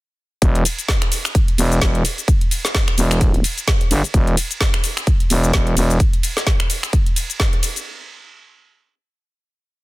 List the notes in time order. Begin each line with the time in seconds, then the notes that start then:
0.42 E1, kick, closed hi-hat, shaker
0.55 closed hi-hat
0.65 open hi-hat, ride, shaker
0.79 closed hi-hat, shaker
0.88 kick, snare, closed hi-hat, shaker
1.02 finger snap, closed hi-hat
1.12 open hi-hat, ride, shaker
1.25 finger snap, shaker
1.35 kick, closed hi-hat, shaker
1.48 closed hi-hat
1.58 E1, open hi-hat, ride, shaker
1.72 closed hi-hat, shaker
1.81 E1, kick, snare, closed hi-hat, shaker
1.95 closed hi-hat
2.05 open hi-hat, ride, shaker
2.18 closed hi-hat, shaker
2.28 kick, closed hi-hat, shaker
2.41 closed hi-hat
2.51 open hi-hat, ride, shaker
2.65 snare, closed hi-hat, shaker
2.74 kick, snare, closed hi-hat, shaker
2.88 finger snap, closed hi-hat
2.98 E1, open hi-hat, ride, shaker
3.11 finger snap, closed hi-hat, shaker
3.21 kick, closed hi-hat, shaker
3.34 closed hi-hat
3.44 open hi-hat, ride, shaker
3.58 closed hi-hat, shaker
3.68 kick, snare, closed hi-hat, shaker
3.81 closed hi-hat
3.91 G1, open hi-hat, ride, shaker
4.04 closed hi-hat, shaker
4.14 E1, kick, closed hi-hat, shaker
4.27 closed hi-hat
4.37 open hi-hat, ride, shaker
4.51 closed hi-hat, shaker
4.61 kick, snare, closed hi-hat, shaker
4.74 finger snap, closed hi-hat
4.84 open hi-hat, ride, shaker
4.97 finger snap, shaker
5.07 kick, closed hi-hat, shaker
5.20 closed hi-hat
5.30 E1, open hi-hat, ride, shaker
5.44 closed hi-hat, shaker
5.53 E1, kick, snare, closed hi-hat, shaker
5.67 closed hi-hat
5.77 E1, open hi-hat, ride, shaker
5.90 closed hi-hat, shaker
6.00 kick, closed hi-hat, shaker
6.13 closed hi-hat
6.23 open hi-hat, ride, shaker
6.37 snare, closed hi-hat, shaker
6.47 kick, snare, closed hi-hat, shaker
6.60 finger snap, closed hi-hat
6.70 open hi-hat, ride, shaker
6.83 finger snap, shaker
6.93 kick, closed hi-hat, shaker
7.06 closed hi-hat
7.16 open hi-hat, ride, shaker
7.30 closed hi-hat, shaker
7.40 kick, snare, closed hi-hat, shaker
7.53 closed hi-hat
7.63 open hi-hat, ride, shaker
7.76 closed hi-hat, shaker